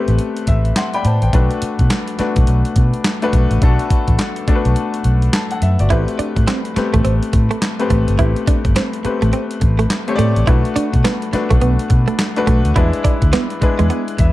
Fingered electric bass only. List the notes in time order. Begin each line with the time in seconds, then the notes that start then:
0.08 A1
0.48 A1
1.05 A2
1.22 A1
1.33 B1
1.62 muted fingered electric bass stroke
1.79 B2
2.19 muted fingered electric bass stroke
2.37 B1
2.48 B1
2.76 B2
3.33 B1
3.51 A1
3.62 B1
4.08 A1
4.48 muted fingered electric bass stroke
4.66 B1
5.05 B1
5.62 F#2
5.80 G1
5.91 A1
6.19 muted fingered electric bass stroke
6.37 A2
6.76 muted fingered electric bass stroke
6.94 A1
7.05 A1
7.34 A2
7.90 A1
8.08 G1
8.19 A1
8.65 G1
9.05 muted fingered electric bass stroke
9.22 A1
9.62 A1
10.19 A2
10.37 A1
10.48 B1
10.76 muted fingered electric bass stroke
10.94 B2
11.33 muted fingered electric bass stroke
11.51 B1
11.62 B1
11.91 B2
12.48 B1
12.65 D2
12.76 E2
13.22 D2
13.62 muted fingered electric bass stroke
13.80 E2
14.19 E2